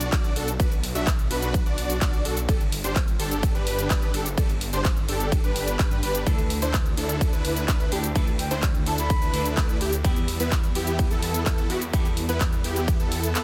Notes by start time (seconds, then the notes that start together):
Already playing: B1
0.01 closed hi-hat, shaker
0.12 B1 D4 F#4 D5, kick, clap, closed hi-hat, ride, shaker
0.24 closed hi-hat, shaker
0.36 B1 D4 F#4 A4, open hi-hat
0.48 closed hi-hat, shaker
0.60 B1 D4 F#4 B4, kick, closed hi-hat, ride, shaker
0.72 closed hi-hat, shaker
0.84 open hi-hat
0.95 B1 D4 F#4 E5, closed hi-hat, shaker
1.07 kick, clap, closed hi-hat, ride, shaker
1.19 closed hi-hat, shaker
1.30 B1 D4 F#4 B4, open hi-hat
1.43 closed hi-hat, shaker
1.54 kick, closed hi-hat, ride, shaker
1.66 B1 D4 F#4 D5, closed hi-hat, shaker
1.78 open hi-hat
1.90 closed hi-hat, shaker
2.01 B1 F#4 D5, kick, clap, closed hi-hat, ride, shaker
2.13 closed hi-hat, shaker
2.25 B1 D4 F#4 A4, open hi-hat
2.37 closed hi-hat, shaker
2.49 G1 D4 G4 A4, kick, closed hi-hat, ride, shaker
2.61 closed hi-hat, shaker
2.72 open hi-hat
2.84 G1 D4 G4 C5, closed hi-hat, shaker
2.96 kick, clap, closed hi-hat, ride, shaker
3.08 closed hi-hat, shaker
3.19 G1 D4 G4 A4, open hi-hat
3.31 closed hi-hat, shaker
3.43 kick, closed hi-hat, ride, shaker
3.55 G1 D4 G4 B4, closed hi-hat, shaker
3.67 open hi-hat
3.79 closed hi-hat, shaker
3.90 G1 D4 G4 B4, kick, clap, closed hi-hat, ride, shaker
4.02 closed hi-hat, shaker
4.14 G1 D4 G4 A4, open hi-hat
4.26 closed hi-hat, shaker
4.38 G1 D4 G4 A4, kick, closed hi-hat, ride, shaker
4.49 closed hi-hat, shaker
4.61 open hi-hat
4.73 G1 D4 G4 C5, closed hi-hat, shaker
4.85 kick, clap, closed hi-hat, ride, shaker
4.97 closed hi-hat, shaker
5.08 G1 D4 G4 A4, open hi-hat
5.20 closed hi-hat, shaker
5.32 kick, closed hi-hat, ride, shaker
5.44 G1 D4 G4 B4, closed hi-hat, shaker
5.56 open hi-hat
5.68 closed hi-hat, shaker
5.79 G1 D4 G4 B4, kick, clap, closed hi-hat, ride, shaker
5.91 G2 D4 G4 B4, closed hi-hat, shaker
6.03 G1 D4 G4 B4, open hi-hat
6.15 closed hi-hat, shaker
6.25 D2 D3 A3 D4 E4 A4, kick, closed hi-hat, ride, shaker
6.38 closed hi-hat, shaker
6.50 open hi-hat
6.62 D2 D4 E4 C5, closed hi-hat, shaker
6.74 kick, clap, closed hi-hat, ride, shaker
6.86 closed hi-hat, shaker
6.97 D2 D4 E4 A4, open hi-hat
7.09 closed hi-hat, shaker
7.21 kick, closed hi-hat, ride, shaker
7.33 D2 D4 E4 B4, closed hi-hat, shaker
7.45 open hi-hat
7.57 closed hi-hat, shaker
7.68 D2 D4 E4 B4, kick, clap, closed hi-hat, ride, shaker
7.80 closed hi-hat, shaker
7.91 D2 D3 A3 D4 E4 G4 A4 G5, open hi-hat
8.04 G5, closed hi-hat, shaker
8.14 D2 D3 A3 D4 E4 A4 B4, kick, closed hi-hat, ride, shaker
8.27 closed hi-hat, shaker
8.39 G5, open hi-hat
8.51 D2 D4 E4 C5, closed hi-hat, shaker
8.63 kick, clap, closed hi-hat, ride, shaker
8.75 closed hi-hat, shaker
8.86 D2 D4 E4 A4 A5, open hi-hat
8.98 B5, closed hi-hat, shaker
9.10 kick, closed hi-hat, ride, shaker
9.22 D2 D4 E4 B4, closed hi-hat, shaker
9.33 D3 A3 D4 E4 A4, open hi-hat
9.46 closed hi-hat, shaker
9.57 D2 D4 E4 B4, kick, clap, closed hi-hat, ride, shaker
9.69 closed hi-hat, shaker
9.81 D2 D4 E4 G4, open hi-hat
9.93 closed hi-hat, shaker
10.03 E2 G3 B3 E4 G4, kick, closed hi-hat, ride, shaker
10.16 closed hi-hat, shaker
10.28 open hi-hat
10.40 E2 B3 E4 B4, closed hi-hat, shaker
10.52 kick, clap, closed hi-hat, ride, shaker
10.64 closed hi-hat, shaker
10.75 E2 B3 E4 G4, open hi-hat
10.87 closed hi-hat, shaker
10.99 kick, closed hi-hat, ride, shaker
11.11 E2 B3 E4 A4, closed hi-hat, shaker
11.23 open hi-hat
11.34 closed hi-hat, shaker
11.46 E2 B3 A4, kick, clap, closed hi-hat, ride, shaker
11.58 closed hi-hat, shaker
11.69 E2 G3 B3 E4 F#4 G4, open hi-hat
11.82 closed hi-hat, shaker
11.92 E2 G3 B3 E4 G4 A4, kick, closed hi-hat, ride, shaker
12.05 closed hi-hat, shaker
12.17 open hi-hat
12.29 E2 B3 E4 B4, closed hi-hat, shaker
12.41 kick, clap, closed hi-hat, ride, shaker
12.53 closed hi-hat, shaker
12.64 E2 B3 E4 G4, open hi-hat
12.76 closed hi-hat, shaker
12.88 kick, closed hi-hat, ride, shaker
13.00 E2 B3 E4 A4, closed hi-hat, shaker
13.12 open hi-hat
13.23 closed hi-hat, shaker
13.35 B3 E4 A4, clap, closed hi-hat, ride, shaker